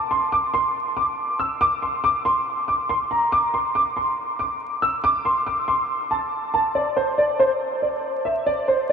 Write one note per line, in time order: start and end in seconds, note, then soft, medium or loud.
0.11 0.29 C6 medium
0.32 0.51 D6 medium
0.54 0.72 C6 medium
0.97 1.37 D6 medium
1.39 1.58 E6 medium
1.61 1.79 D6 loud
1.82 2.01 C6 medium
2.04 2.22 D6 medium
2.25 2.44 C6 medium
2.68 2.87 D6 medium
2.89 3.08 C6 medium
3.11 3.29 A#5 medium
3.32 3.51 D6 loud
3.54 3.72 C6 medium
3.75 3.94 D6 medium
3.97 4.15 C6 medium
4.39 4.80 D6 medium
4.82 5.01 E6 medium
5.04 5.22 D6 loud
5.25 5.44 C6 medium
5.46 5.65 D6 medium
5.68 6.08 C6 medium
6.11 6.51 A5 medium
6.54 6.72 A5 medium
6.75 6.94 D5 medium
6.96 7.15 C5 medium
7.18 7.36 D5 medium
7.39 7.58 C5 medium
7.82 8.23 D5 medium
8.25 8.44 E5 medium
8.46 8.65 D5 loud
8.68 8.86 C5 medium
8.89 8.92 D5 medium